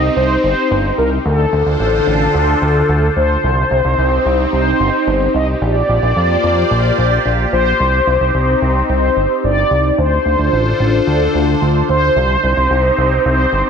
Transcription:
0.00 1.23 C4 medium
0.00 1.23 D#4 medium
0.00 1.21 G4 medium
0.00 0.12 D#5 loud
0.16 0.37 C2 medium
0.16 0.42 C5 loud
0.43 0.54 G1 medium
0.43 0.94 C5 loud
0.71 0.91 G1 loud
0.97 1.19 C2 medium
0.97 1.10 A#4 loud
1.25 1.46 D2 loud
1.25 3.41 D3 medium
1.25 3.41 D4 medium
1.25 3.41 F4 medium
1.25 3.41 A4 medium
1.25 1.36 A#4 loud
1.25 3.41 C5 medium
1.36 1.78 A4 loud
1.53 1.63 D2 loud
1.66 1.77 D2 medium
1.80 2.00 A1 medium
1.80 3.12 A4 loud
2.07 2.28 A1 medium
2.34 2.55 D2 loud
2.62 2.82 D2 loud
2.89 3.10 D2 medium
3.16 3.37 D2 medium
3.16 4.51 C5 loud
3.43 3.64 C2 loud
3.43 5.59 C4 medium
3.43 5.59 D#4 medium
3.43 9.94 G4 medium
3.71 3.81 C2 medium
3.85 3.95 C2 medium
3.98 4.19 C2 loud
4.26 4.46 C2 medium
4.52 4.73 C2 medium
4.52 5.37 C5 loud
4.80 4.90 G1 medium
5.07 5.28 G1 loud
5.34 5.55 C2 medium
5.34 5.47 D#5 loud
5.61 5.82 A#1 loud
5.61 7.78 A#3 medium
5.61 7.78 F4 medium
5.61 7.78 C5 medium
5.61 7.21 D5 loud
5.61 7.78 D5 medium
5.89 5.99 A#1 medium
6.03 6.13 A#1 medium
6.16 6.37 F2 medium
6.43 6.64 F2 medium
6.71 6.91 A#1 loud
6.98 7.19 A#1 medium
7.25 7.46 A#1 medium
7.52 7.73 A#1 medium
7.52 8.85 C5 loud
7.80 8.00 C2 loud
7.80 9.96 C4 medium
7.80 9.96 D#4 medium
8.07 8.17 C2 medium
8.21 8.31 C2 medium
8.35 8.55 C2 medium
8.62 8.82 C2 medium
8.89 9.10 C2 medium
8.89 9.45 C5 loud
9.16 9.27 G1 medium
9.44 9.64 G1 loud
9.44 10.00 D5 loud
9.71 9.91 C2 medium
9.98 10.19 D2 loud
9.98 12.14 D3 medium
9.98 12.14 D4 medium
9.98 12.14 F4 medium
9.98 12.14 A4 medium
9.98 11.03 C5 loud
9.98 12.14 C5 medium
10.26 10.36 D2 medium
10.39 10.49 D2 medium
10.53 10.73 A1 medium
10.80 11.00 A1 medium
11.07 11.28 D2 loud
11.07 11.58 A4 medium
11.35 11.55 D2 loud
11.62 11.82 D2 medium
11.89 12.10 D2 medium
11.89 13.21 C5 loud
12.16 12.37 C2 loud
12.16 13.70 C4 medium
12.16 13.70 D#4 medium
12.16 13.70 G4 medium
12.43 12.54 C2 medium
12.57 12.67 C2 medium
12.71 12.91 C2 loud
12.98 13.19 C2 medium
13.25 13.46 C2 medium
13.25 13.70 C5 loud
13.52 13.63 G1 medium

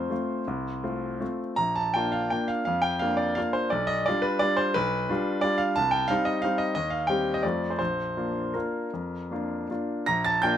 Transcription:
0.00 0.13 F2 medium
0.00 0.10 A3 soft
0.00 0.10 C4 soft
0.00 0.11 F4 soft
0.00 1.39 C5 medium
0.10 0.43 A3 soft
0.10 0.44 C4 soft
0.10 0.44 F4 soft
0.47 0.82 C2 medium
0.84 1.17 A3 soft
0.84 1.17 C4 soft
0.84 1.17 F4 soft
1.20 1.54 A3 soft
1.20 1.54 C4 soft
1.20 1.55 F4 soft
1.56 1.93 A#1 medium
1.56 1.75 A#5 medium
1.76 1.94 A5 medium
1.94 2.28 A#3 soft
1.94 2.28 D4 soft
1.94 2.29 F4 soft
1.94 2.12 G5 medium
2.12 2.31 F5 medium
2.30 2.63 A#3 soft
2.30 2.64 D4 soft
2.30 2.64 F4 soft
2.30 2.49 G5 medium
2.48 2.64 F5 medium
2.65 3.00 F2 medium
2.65 2.83 F5 medium
2.82 3.00 G5 medium
2.99 3.34 A#3 soft
2.99 3.34 D4 soft
2.99 3.34 F4 soft
2.99 3.18 F5 medium
3.17 3.36 D5 medium
3.35 3.68 A#3 soft
3.35 3.69 D4 soft
3.35 3.69 F4 medium
3.35 3.54 F5 medium
3.53 3.71 C5 medium
3.70 4.05 B1 medium
3.70 3.88 D5 medium
3.87 4.05 D#5 medium
4.06 4.39 G3 medium
4.06 4.39 D4 soft
4.06 4.39 F4 medium
4.06 4.24 D5 medium
4.22 4.41 B4 medium
4.39 4.73 G3 soft
4.39 4.73 D4 soft
4.39 4.73 F4 medium
4.39 4.58 D5 medium
4.57 4.75 C5 medium
4.74 5.08 B1 medium
4.74 5.42 B4 loud
5.09 5.40 G3 medium
5.09 5.40 D4 medium
5.09 5.40 F4 medium
5.41 5.73 G3 medium
5.41 5.73 D4 soft
5.41 5.74 F4 medium
5.41 5.59 D5 medium
5.58 5.76 F5 medium
5.76 6.09 C2 medium
5.76 5.93 A5 loud
5.91 6.09 G5 medium
6.08 6.40 G3 medium
6.08 6.40 C4 soft
6.08 6.40 D#4 medium
6.08 6.25 F5 medium
6.25 6.43 D#5 medium
6.42 6.73 G3 soft
6.42 6.73 C4 soft
6.42 6.73 D#4 medium
6.42 6.59 F5 medium
6.58 6.73 D#5 medium
6.75 7.08 D#2 medium
6.75 6.91 D#5 medium
6.90 7.08 F5 medium
7.07 7.40 G3 soft
7.07 7.41 C4 soft
7.07 7.41 G4 soft
7.07 7.34 G5 medium
7.34 7.43 D#5 medium
7.43 7.79 F2 medium
7.43 7.77 A3 soft
7.43 7.77 C4 soft
7.43 7.78 F4 soft
7.43 7.70 D5 medium
7.70 7.77 C5 medium
7.79 8.16 A#1 soft
7.79 8.54 C5 medium
8.17 8.51 A#3 soft
8.17 8.51 D4 soft
8.17 8.51 F4 soft
8.54 8.89 A#3 soft
8.54 8.89 D4 soft
8.54 8.89 F4 soft
8.54 9.69 A#4 soft
8.93 9.30 F2 soft
9.31 9.66 A#3 soft
9.31 9.66 D4 soft
9.31 9.67 F4 soft
9.70 10.04 A#3 soft
9.70 10.05 D4 soft
9.70 10.05 F4 soft
10.06 10.42 A#1 medium
10.06 10.24 A#5 medium
10.06 10.25 A#6 medium
10.24 10.42 A5 medium
10.24 10.42 A6 medium
10.42 10.57 A#3 medium
10.42 10.57 D4 medium
10.42 10.57 F4 medium
10.42 10.57 G5 medium
10.42 10.57 G6 medium

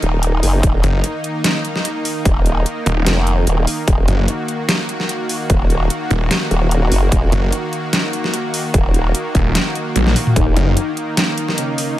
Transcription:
0.00 0.41 D#1 loud
0.00 11.99 D#3 medium
0.00 11.99 A#3 medium
0.00 3.86 D#4 medium
0.00 closed hi-hat medium
0.23 closed hi-hat medium
0.43 0.62 F#1 medium
0.43 open hi-hat loud
0.63 0.82 D#1 loud
0.63 kick loud
0.63 closed hi-hat medium
0.83 1.02 F#1 medium
0.83 closed hi-hat medium
1.04 closed hi-hat medium
1.24 closed hi-hat medium
1.44 snare loud
1.44 closed hi-hat medium
1.65 closed hi-hat medium
1.76 snare soft
1.85 closed hi-hat medium
2.05 open hi-hat medium
2.25 2.64 D#1 medium
2.25 kick loud
2.25 closed hi-hat medium
2.46 closed hi-hat medium
2.66 closed hi-hat medium
2.86 3.05 D#1 loud
2.86 closed hi-hat medium
3.06 3.46 F1 loud
3.06 snare loud
3.06 closed hi-hat medium
3.27 closed hi-hat medium
3.47 3.66 D#1 loud
3.47 closed hi-hat medium
3.67 open hi-hat medium
3.88 4.06 D#1 medium
3.88 10.34 F#4 medium
3.88 kick loud
3.88 closed hi-hat medium
4.08 4.27 F#1 loud
4.08 closed hi-hat medium
4.28 closed hi-hat medium
4.48 closed hi-hat soft
4.69 snare loud
4.69 closed hi-hat medium
4.89 closed hi-hat soft
5.00 snare soft
5.09 closed hi-hat medium
5.29 open hi-hat medium
5.50 5.89 D#1 loud
5.50 kick loud
5.50 closed hi-hat medium
5.70 closed hi-hat medium
5.90 closed hi-hat medium
6.11 6.29 D#1 loud
6.11 closed hi-hat soft
6.31 snare loud
6.31 closed hi-hat medium
6.51 6.90 D#1 loud
6.51 closed hi-hat medium
6.71 closed hi-hat medium
6.92 7.10 F#1 medium
6.92 open hi-hat medium
7.12 7.31 D#1 loud
7.12 kick loud
7.12 closed hi-hat medium
7.32 7.51 F#1 loud
7.32 closed hi-hat medium
7.52 closed hi-hat medium
7.73 closed hi-hat medium
7.93 snare loud
7.93 closed hi-hat medium
8.13 closed hi-hat medium
8.24 snare soft
8.34 closed hi-hat medium
8.54 open hi-hat loud
8.74 9.13 D#1 loud
8.74 kick loud
8.74 closed hi-hat medium
8.94 closed hi-hat medium
9.15 closed hi-hat medium
9.35 9.54 D#1 loud
9.35 kick medium
9.35 closed hi-hat medium
9.55 snare loud
9.55 closed hi-hat medium
9.75 closed hi-hat medium
9.96 10.14 A#1 loud
9.96 closed hi-hat medium
9.96 high tom medium
10.07 snare soft
10.07 high tom medium
10.16 open hi-hat loud
10.27 mid tom medium
10.36 10.55 D#1 loud
10.36 10.90 D#3 medium
10.36 11.99 D#4 medium
10.36 10.90 D#4 loud
10.36 kick loud
10.36 closed hi-hat medium
10.56 10.75 F#1 loud
10.56 closed hi-hat medium
10.77 closed hi-hat medium
10.97 closed hi-hat medium
11.17 snare loud
11.17 closed hi-hat medium
11.38 closed hi-hat medium
11.49 snare soft
11.58 11.99 C#3 medium
11.58 11.99 C#4 medium
11.58 closed hi-hat medium
11.78 open hi-hat loud

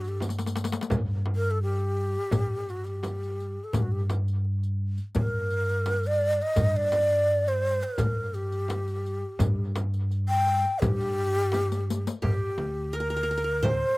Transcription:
0.00 0.73 G2 loud
0.00 0.10 F#4 medium
0.04 riq soft
0.08 0.19 G4 medium
0.20 riq medium
0.20 darbuka tek medium
0.20 frame drum medium
0.29 riq medium
0.29 darbuka ka medium
0.39 riq medium
0.39 darbuka tek medium
0.46 riq medium
0.46 darbuka ka medium
0.56 riq medium
0.56 darbuka tek medium
0.64 riq medium
0.64 darbuka ka medium
0.72 riq medium
0.72 darbuka tek medium
0.81 riq medium
0.81 darbuka ka medium
0.90 2.15 G2 medium
0.90 riq medium
0.90 darbuka dum medium
0.90 frame drum loud
1.26 darbuka tek medium
1.26 frame drum medium
1.36 1.52 A#4 medium
1.44 riq soft
1.51 1.62 A4 medium
1.62 2.72 G4 medium
1.62 darbuka ka soft
1.79 riq soft
2.15 riq soft
2.31 3.57 G2 medium
2.31 riq medium
2.31 frame drum medium
2.31 darbuka dum medium
2.69 2.86 F#4 medium
2.69 riq soft
2.85 3.65 G4 medium
2.85 riq soft
3.03 riq soft
3.03 darbuka tek medium
3.03 frame drum medium
3.23 riq soft
3.40 riq soft
3.64 3.75 A4 medium
3.73 4.98 G2 loud
3.73 3.84 G4 medium
3.73 riq medium
3.73 darbuka dum medium
3.73 frame drum medium
3.82 3.93 F#4 medium
3.92 4.01 G4 medium
4.10 riq soft
4.10 darbuka tek medium
4.10 frame drum medium
4.28 riq soft
4.45 darbuka ka soft
4.63 riq soft
4.98 riq soft
5.15 6.39 G2 medium
5.15 riq medium
5.15 frame drum medium
5.15 darbuka dum medium
5.19 6.08 A#4 medium
5.50 riq soft
5.69 riq soft
5.86 riq soft
5.86 darbuka tek medium
5.86 frame drum medium
6.03 6.43 D5 loud
6.03 riq soft
6.21 riq soft
6.42 6.78 D#5 loud
6.56 7.80 G2 loud
6.56 riq medium
6.56 darbuka dum medium
6.56 frame drum medium
6.76 7.50 D5 loud
6.92 riq soft
6.92 darbuka tek medium
6.92 frame drum medium
7.10 riq soft
7.28 darbuka ka soft
7.46 7.85 C5 medium
7.46 riq soft
7.81 8.36 A#4 medium
7.81 riq soft
7.98 9.22 G2 medium
7.98 riq medium
7.98 frame drum medium
7.98 darbuka dum medium
8.34 9.71 G4 medium
8.34 riq soft
8.52 riq soft
8.68 riq soft
8.68 darbuka tek medium
8.68 frame drum medium
8.88 riq soft
9.06 riq soft
9.39 10.63 G2 loud
9.39 riq medium
9.39 frame drum medium
9.39 darbuka dum medium
9.76 riq soft
9.76 darbuka tek medium
9.76 frame drum medium
9.94 riq soft
9.94 darbuka ka soft
10.11 riq soft
10.11 darbuka ka soft
10.29 10.81 G5 loud
10.29 darbuka ka soft
10.47 riq soft
10.47 darbuka ka soft
10.64 riq soft
10.64 darbuka ka soft
10.80 12.05 G2 loud
10.80 12.08 G4 loud
10.80 riq medium
10.80 darbuka dum medium
10.80 frame drum medium
11.00 riq soft
11.00 darbuka ka soft
11.18 riq soft
11.36 riq soft
11.52 riq medium
11.52 darbuka tek medium
11.52 frame drum medium
11.72 riq medium
11.90 riq medium
12.07 riq medium
12.22 12.54 G2 medium
12.22 13.48 G4 medium
12.22 12.97 G4 medium
12.22 darbuka dum medium
12.22 frame drum medium
12.58 13.81 D2 medium
12.58 darbuka tek medium
12.58 frame drum medium
12.76 darbuka ka soft
12.93 13.00 A#4 medium
12.93 13.66 A#4 medium
12.93 darbuka ka soft
13.00 13.10 A#4 medium
13.10 13.16 A#4 medium
13.16 13.23 A#4 medium
13.23 13.30 A#4 medium
13.31 13.37 A#4 soft
13.37 13.44 A#4 medium
13.44 13.98 A#4 medium
13.63 13.98 C5 medium
13.63 13.98 C5 loud
13.63 darbuka dum medium
13.63 frame drum medium

